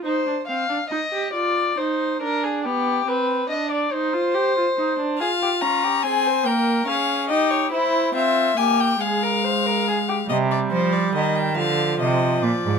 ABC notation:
X:1
M:6/8
L:1/16
Q:3/8=47
K:Cphr
V:1 name="Violin"
z12 | z12 | f2 b2 a2 g2 f2 e d | c2 =e2 a g f6 |
e =d c d e g f2 e2 d2 |]
V:2 name="Violin"
c2 f2 e2 =d2 c2 B A | G2 =B2 e =d c6 | A G F G A c B2 A2 G2 | =E2 F2 G2 A B c B A G |
z12 |]
V:3 name="Viola"
E =D C D E G F2 E2 D2 | =B,2 C2 =D2 E F G F E D | F2 D2 C2 B,2 D2 E2 | =E2 C2 B,2 A,6 |
G,6 F,6 |]
V:4 name="Cello" clef=bass
z12 | z12 | z12 | z12 |
C,2 F,2 E,2 =D,2 C,2 B,, A,, |]